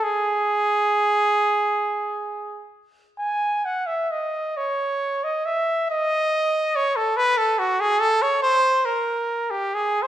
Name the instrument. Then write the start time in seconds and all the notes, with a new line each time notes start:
trumpet
0.03 G#4
3.18 G#5
3.65 F#5
3.86 E5
4.11 D#5
4.57 C#5
5.24 D#5
5.46 E5
5.90 D#5
6.76 C#5
6.96 A4
7.17 B4
7.37 A4
7.59 F#4
7.80 G#4
8.00 A4
8.22 C#5
8.42 C5
8.85 A#4
9.50 G4
9.74 G#4
10.02 C5